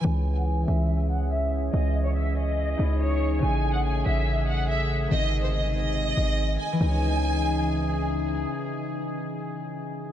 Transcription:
<<
  \new Staff \with { instrumentName = "Violin section" } { \time 4/4 \key cis \minor \tempo 4 = 142 gis''8. fis''16 gis''8 e''4 fis''8 e''8 r8 | dis''8. cis''16 e''8 dis''4. cis''4 | gis''8. fis''16 gis''8 e''4 fis''8 e''8 r8 | dis''8. bis'16 dis''8 dis''2 gis''8 |
gis''2. r4 | r1 | }
  \new Staff \with { instrumentName = "Harp" } { \time 4/4 \key cis \minor <e cis' e'>1~ | <e cis' e'>2~ <e cis' e'>8 <cis' dis' e'>4. | <cis a gis'>1 | <dis bis gis'>1 |
<e dis' cis''>1~ | <e dis' cis''>1 | }
  \new Staff \with { instrumentName = "Brass ensemble" } { \clef bass \time 4/4 \key cis \minor << { gis'1~ | gis'1~ | gis'1~ | gis'1 |
<cis e dis' gis'>1~ | <cis e dis' gis'>1 | } \\ { <e cis'>1~ | <e cis'>1 | <cis a>1 | <bis, gis dis'>1 |
r1 | r1 | } >> }
  \new Staff \with { instrumentName = "808-style bass" } { \clef bass \time 4/4 \key cis \minor cis,4. cis,2~ cis,8 | cis,2~ cis,8 cis,4. | a,,4. a,,2~ a,,8 | gis,,2~ gis,,8 gis,,4 r8 |
cis,1 | r1 | }
>>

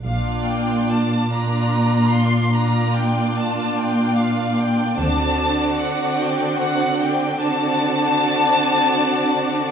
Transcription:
<<
  \new Staff \with { instrumentName = "Violin section" } { \time 12/8 \key bes \major \tempo 4. = 50 f''8 g''8 a''8 bes''4 c'''8 bes''8 g''8 a''8 g''8 f''8 g''8 | a''4 fis''8 g''8 fis''8 g''8 a''2. | }
  \new Staff \with { instrumentName = "Violin section" } { \time 12/8 \key bes \major <f' d''>4. <f' d''>4. <f' d''>2. | <fis' d''>2. <fis' d''>2. | }
  \new Staff \with { instrumentName = "Viola section" } { \time 12/8 \key bes \major <bes d'>4. <bes d'>4. <bes d'>2. | <c' d'>2. <c' d'>2. | }
  \new Staff \with { instrumentName = "Cello section" } { \clef bass \time 12/8 \key bes \major bes,1. | d1. | }
  \new Staff \with { instrumentName = "Double bass section" } { \clef bass \time 12/8 \key bes \major bes,,4 r1 r4 | d,4 r1 r4 | }
>>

